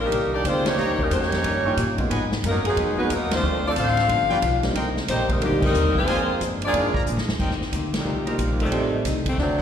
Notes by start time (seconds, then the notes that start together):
Already playing: A#1
0.00 D#3 G3 A#3 D4 D#4 A#4
0.11 C2 D#3 A#3 D4 G4, kick, ride
0.34 G3 A#3 D4 D#4 G4 D5
0.44 D2 D#3 G#3 A#3 C4 D4 F4 G4 C5, kick, hi-hat pedal, ride
0.65 G3 A#3 C#4 D#4 G4 C#5, snare, ride
0.77 D#2 D#3 A#3 C#4 G4 C#5 D#5 G5 A#5
0.99 C#3 G3 A#3 C#4 D#4 A#4, kick
1.11 F2 D#3 G3 A#3 C#4 D#4 G4 C#5, kick, hi-hat pedal, ride
1.22 snare
1.32 snare, ride
1.44 G2 D#3 A#3 C#4 G4, kick, ride
1.64 G3 A#3 C#4 D#4 F4 C#5 D#5 G5 C#6
1.77 A#2 D#3 A#3 C#4 G4, kick, hi-hat pedal, ride
1.98 G#3 A#3 B3 D#4 F4, kick, ride
2.10 G#2 F#3 B3 D#4 B4 D#5 F#5 G#5, kick, ride
2.32 snare
2.43 F#2 G#2 F#3 A#3 B3 D#4 A#4, kick, hi-hat pedal, ride
2.64 B2 D#3 F#3 G#3 B3 D#4 G#4, ride
2.77 F2 G#2 F#3 B3 D#4, kick, ride
2.97 D#3 F#3 G#3 A#3 B3 D#4 F#4 B4 D#5 F#5 G#5
3.10 D#2 G#2 F#3 A#3 B3 D#4 A#4, kick, hi-hat pedal, ride
3.31 E3 F3 A3 C4 D4 F4, snare, ride
3.35 D4 F4 C5
3.43 D2 D3 A3 C4 F4
3.66 F3 A3 C4 D4 F4 A4 D5
3.76 A1 D3 A3 C4 F4 C5 D5 F5 A5, kick, hi-hat pedal, ride
3.80 D4 A4 C5
3.87 snare
3.97 snare, ride
4.09 G1 G2 F3 B3 D4, kick, ride
4.29 F3 G3 B3 D4 F4 B4 D5 F5 G5, muted upright bass stroke
4.42 B1 G2 F3 B3 D4, kick, hi-hat pedal, ride
4.63 G3 A#3 C4 D4 D#4, snare, ride
4.75 C2 C3 G3 A#3 D#4 A#4 C5 D#5 G5, kick, ride
4.97 snare
5.08 A#1 C3 D#3 G3 A#3 C4 D#4 G4 C5, kick, hi-hat pedal, ride
5.29 D#3 G3 A#3 C4 D#4 A#4, kick, ride
5.41 D2 A#2 C3 D#3 G3 A#3 C4 D4 D#4 F#4 G4, kick, ride
5.62 D#3 G3 A#3 C4 D#4 A#4 C5 D#5 G5, kick, crash
5.74 D#2 C3 G3 A#3 D#4, hi-hat pedal
5.95 F3 G#3 A#3 C4 F4 G#4 C5, muted upright bass stroke, kick
6.07 F2 A#2 F3 G#3 D4 A#4 D5 F5 G#5, kick, ride
6.40 G2 A#2 F3 G#3 D4, kick, hi-hat pedal, ride
6.62 F3 G#3 A#3 D4 F4 D5, ride
6.66 G#4
6.73 G#2 A#2 F3 G#3 A#3 C4 D4 F4, kick, ride
6.94 A#4 D5 F5 A#5, kick
7.06 A#2 F3 G#3 D4, hi-hat pedal
7.17 G#2, snare
7.28 F2, snare
7.39 D#2 D#3 A#3 C4 G4 A#4 C5 D#5 G5, kick, crash
7.51 snare
7.61 snare
7.72 D2 D#3 A#3 C4 G4, kick, hi-hat pedal, ride
7.94 A#2 C3 D#3 G3, snare, ride
8.05 C2 D#3 A#3 C4 G4
8.26 G3 A#3 C4 D#4 F4 A#4 C5 D#5 A#5, ride
8.38 A#1 D#3 A#3 C4 G4, kick, hi-hat pedal, ride
8.60 C3 D#3 G3 A3, ride
8.71 A1 A2 G3 A3 C4 D#4 G4 A4 C5 D#5 G5, kick, ride
9.05 C2 A2 G3 C4 D#4, kick, snare, hi-hat pedal, ride
9.26 D#3 G3 A3 C4, kick, ride
9.38 D2 D3 F#3 A3 C4 D4 D#4, kick, snare
9.59 C5 D5 D#5 F#5, kick